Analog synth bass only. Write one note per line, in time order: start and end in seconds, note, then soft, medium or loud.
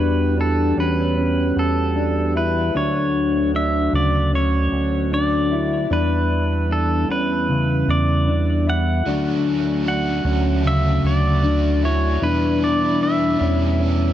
0.00 0.74 E2 medium
0.78 1.53 E2 medium
1.56 2.71 E2 medium
2.75 3.89 D2 medium
3.93 4.68 D2 medium
4.72 5.87 D2 medium
5.91 7.05 E2 medium
7.09 7.84 E2 medium
7.88 9.02 E2 medium
9.06 10.21 D2 medium
10.25 11.00 D2 loud
11.04 12.18 D2 medium
12.22 13.37 E2 loud
13.41 14.13 E2 medium